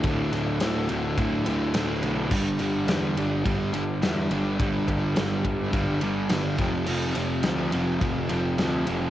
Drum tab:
CC |--------|x-------|--------|x-------|
RD |xxxxxxxx|-xxxxxxx|xxxxxxxx|-xxxxxxx|
SD |-oo---o-|--o---o-|--o---o-|-oo---o-|
BD |o---o---|o---o---|oo-oo--o|----o---|